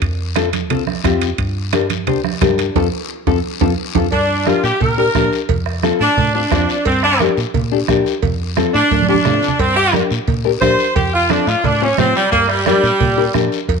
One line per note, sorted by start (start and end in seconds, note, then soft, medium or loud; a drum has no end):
0.02 0.70 F2 medium
0.02 bombo low medium
0.02 high conga soft
0.02 high timbale medium
0.02 long guiro medium
0.36 0.48 C4 medium
0.36 0.48 F4 medium
0.36 0.48 A4 loud
0.36 bombo rim medium
0.36 high conga medium
0.36 high timbale medium
0.36 short guiro medium
0.53 high conga medium
0.53 high timbale medium
0.53 short guiro medium
0.70 0.97 C2 medium
0.70 0.82 C4 medium
0.70 0.82 F4 medium
0.70 0.83 A4 medium
0.70 high conga soft
0.70 low conga medium
0.70 high timbale medium
0.70 long guiro medium
0.87 bombo rim medium
0.87 high conga medium
1.04 1.32 F2 medium
1.04 1.28 C4 medium
1.04 1.29 F4 medium
1.04 1.29 G4 medium
1.04 bombo low medium
1.04 bombo rim medium
1.04 high conga medium
1.04 high timbale medium
1.04 short guiro medium
1.21 high timbale medium
1.21 short guiro medium
1.38 2.07 G2 loud
1.38 bombo low medium
1.38 high conga soft
1.38 high timbale medium
1.38 long guiro medium
1.73 1.85 D4 medium
1.73 1.85 G4 medium
1.73 1.85 A#4 medium
1.73 bombo rim medium
1.73 high conga medium
1.73 high timbale medium
1.73 short guiro medium
1.90 high conga medium
1.90 high timbale medium
1.90 short guiro medium
2.07 2.35 D2 medium
2.07 2.19 D4 medium
2.07 2.19 G4 medium
2.07 2.20 C5 medium
2.07 high conga soft
2.07 low conga medium
2.07 high timbale medium
2.07 long guiro medium
2.24 bombo rim medium
2.24 high conga medium
2.41 2.69 G2 medium
2.41 2.65 D4 medium
2.41 2.66 G4 medium
2.41 2.66 A#4 medium
2.41 bombo low medium
2.41 bombo rim medium
2.41 high conga medium
2.41 low conga medium
2.41 high timbale medium
2.41 low timbale medium
2.41 short guiro medium
2.58 high timbale medium
2.58 short guiro medium
2.75 2.88 F2 medium
2.75 2.87 C4 medium
2.75 2.87 F4 medium
2.75 2.87 A4 medium
2.75 bombo low medium
2.75 high conga medium
2.75 high timbale loud
2.75 long guiro loud
3.27 3.40 F2 medium
3.27 3.38 C4 medium
3.27 3.38 F4 medium
3.27 3.38 A4 medium
3.27 bombo low loud
3.27 high conga medium
3.27 high timbale medium
3.27 long guiro medium
3.61 3.74 F2 loud
3.61 3.72 C4 medium
3.61 3.72 F4 medium
3.61 3.72 A4 medium
3.61 bombo low medium
3.61 high conga loud
3.61 high timbale medium
3.61 long guiro loud
3.95 4.08 F2 medium
3.95 4.07 C4 medium
3.95 4.07 F4 medium
3.95 4.07 A4 medium
3.95 bombo low medium
3.95 high conga loud
3.95 high timbale loud
3.95 long guiro medium
4.12 4.53 G2 medium
4.12 4.45 D4 medium
4.12 bombo low medium
4.12 cowbell loud
4.12 high conga soft
4.12 long guiro medium
4.46 4.65 D4 medium
4.46 4.63 F4 medium
4.46 4.65 G4 medium
4.46 4.65 A#4 medium
4.46 bombo rim medium
4.46 high conga medium
4.46 short guiro medium
4.63 4.71 A#2 medium
4.63 4.80 G4 medium
4.63 short guiro medium
4.80 5.08 A#2 medium
4.80 4.97 A#4 medium
4.80 bombo low medium
4.80 cowbell medium
4.80 high conga soft
4.80 low conga medium
4.80 long guiro medium
4.97 5.04 D4 medium
4.97 5.04 G4 medium
4.97 5.04 A#4 medium
4.97 5.31 A#4 medium
5.15 5.29 A#2 medium
5.15 5.39 D4 medium
5.15 5.39 G4 medium
5.15 5.39 A#4 medium
5.15 bombo low medium
5.15 bombo rim medium
5.15 high conga medium
5.15 short guiro medium
5.33 short guiro medium
5.49 5.90 F2 medium
5.49 bombo low medium
5.49 cowbell loud
5.49 high conga soft
5.49 low conga medium
5.49 long guiro medium
5.66 bombo rim medium
5.83 6.01 C4 medium
5.83 6.01 F4 medium
5.83 6.02 A4 loud
5.83 bombo rim medium
5.83 high conga medium
5.83 short guiro medium
6.00 6.07 A2 medium
6.00 6.34 D4 loud
6.00 short guiro medium
6.17 6.45 A2 medium
6.17 bombo low medium
6.17 cowbell medium
6.17 high conga soft
6.17 low conga medium
6.17 long guiro medium
6.35 6.41 C4 medium
6.35 6.85 D4 medium
6.35 6.41 F4 medium
6.35 6.41 C5 medium
6.51 6.65 F2 medium
6.51 6.76 C4 medium
6.51 6.76 F4 medium
6.51 6.76 C5 medium
6.51 bombo low medium
6.51 bombo rim medium
6.51 high conga medium
6.51 low timbale medium
6.51 short guiro medium
6.69 short guiro medium
6.85 7.27 G2 loud
6.85 7.03 C4 medium
6.85 bombo low medium
6.85 cowbell loud
6.85 high conga soft
6.85 long guiro medium
7.03 7.20 D4 medium
7.03 bombo rim medium
7.20 7.38 D4 medium
7.20 7.38 G4 medium
7.20 7.39 A#4 medium
7.20 bombo rim medium
7.20 high conga medium
7.20 short guiro medium
7.37 7.44 A#2 medium
7.37 short guiro medium
7.54 7.82 A#2 loud
7.54 bombo low medium
7.54 cowbell medium
7.54 high conga soft
7.54 low conga medium
7.54 long guiro medium
7.72 7.78 D4 medium
7.72 7.78 G4 medium
7.72 7.78 A4 medium
7.88 8.02 A#2 medium
7.88 8.12 D4 medium
7.88 8.13 G4 medium
7.88 8.13 A#4 medium
7.88 bombo low medium
7.88 bombo rim medium
7.88 high conga medium
7.88 short guiro medium
8.06 short guiro medium
8.22 8.64 F2 loud
8.22 bombo low medium
8.22 cowbell loud
8.22 high conga soft
8.22 low conga medium
8.22 long guiro medium
8.57 8.75 C4 medium
8.57 8.75 F4 medium
8.57 8.75 A4 loud
8.57 bombo rim medium
8.57 high conga medium
8.57 short guiro medium
8.74 8.81 A2 loud
8.74 9.07 D4 loud
8.74 short guiro medium
8.91 9.19 A2 medium
8.91 bombo low medium
8.91 cowbell medium
8.91 high conga medium
8.91 long guiro medium
9.03 high conga medium
9.08 9.14 C4 medium
9.08 9.58 D4 medium
9.08 9.14 F4 medium
9.08 9.14 G4 medium
9.14 high conga medium
9.25 9.39 A2 medium
9.25 9.49 C4 medium
9.25 9.49 F4 medium
9.25 9.49 A4 medium
9.25 bombo rim medium
9.25 low conga loud
9.25 low timbale medium
9.25 short guiro medium
9.43 short guiro medium
9.48 low conga medium
9.59 10.00 G2 loud
9.59 9.76 C4 medium
9.59 bombo low medium
9.59 cowbell loud
9.59 high conga soft
9.59 long guiro medium
9.76 9.93 G4 medium
9.76 bombo rim medium
9.93 10.12 D4 medium
9.93 10.12 G4 medium
9.93 10.12 A#4 medium
9.93 bombo rim medium
9.93 high conga medium
9.93 short guiro medium
10.11 10.18 A#2 medium
10.11 short guiro medium
10.28 10.55 A#2 medium
10.28 bombo low medium
10.28 cowbell medium
10.28 high conga soft
10.28 low conga medium
10.28 long guiro medium
10.44 10.51 D4 medium
10.44 10.51 G4 medium
10.44 10.51 A#4 loud
10.61 10.75 A#2 medium
10.61 10.86 D4 medium
10.61 10.86 G4 medium
10.61 10.86 A#4 medium
10.61 10.95 C5 loud
10.61 bombo low medium
10.61 bombo rim medium
10.61 high conga medium
10.61 low timbale medium
10.61 short guiro medium
10.79 short guiro medium
10.96 11.37 F2 loud
10.96 11.12 G4 medium
10.96 bombo low medium
10.96 cowbell loud
10.96 high conga soft
10.96 low conga medium
10.96 long guiro medium
11.14 11.30 F4 loud
11.30 11.48 C4 medium
11.30 11.47 D4 medium
11.30 11.48 F4 medium
11.30 11.48 A4 medium
11.30 bombo rim medium
11.30 high conga medium
11.30 short guiro medium
11.47 11.54 A2 loud
11.47 11.64 F4 medium
11.47 short guiro medium
11.64 11.91 A2 loud
11.64 11.81 D4 medium
11.64 bombo low medium
11.64 cowbell medium
11.64 high conga soft
11.64 low conga medium
11.64 long guiro medium
11.81 11.87 C4 medium
11.81 11.98 C#4 loud
11.81 11.87 F4 medium
11.81 11.88 C5 medium
11.97 12.12 A2 medium
11.97 12.22 C4 medium
11.97 12.15 C4 medium
11.97 12.22 F4 medium
11.97 12.22 C5 medium
11.97 bombo rim medium
11.97 high conga medium
11.97 low conga medium
11.97 low timbale medium
11.97 short guiro medium
12.16 12.32 G3 loud
12.16 short guiro medium
12.31 12.73 G2 loud
12.31 12.48 A#3 medium
12.31 bombo low medium
12.31 cowbell loud
12.31 high conga soft
12.31 long guiro medium
12.48 12.65 G3 loud
12.48 bombo rim medium
12.66 13.32 G3 loud
12.66 12.84 D4 medium
12.66 12.84 G4 medium
12.66 12.85 A#4 medium
12.66 bombo rim medium
12.66 high conga medium
12.66 short guiro medium
12.83 12.90 A#2 loud
12.83 short guiro medium
13.00 13.28 A#2 loud
13.00 bombo low medium
13.00 cowbell medium
13.00 high conga soft
13.00 low conga medium
13.00 long guiro medium
13.17 13.23 D4 medium
13.17 13.24 G4 medium
13.17 13.24 A#4 medium
13.34 13.48 A#2 medium
13.34 13.58 D4 medium
13.34 13.59 G4 medium
13.34 13.59 A#4 medium
13.34 bombo rim medium
13.34 high conga medium
13.34 short guiro medium
13.52 short guiro medium
13.68 13.80 F2 loud
13.68 bombo low medium
13.68 cowbell loud
13.68 high conga soft
13.68 long guiro medium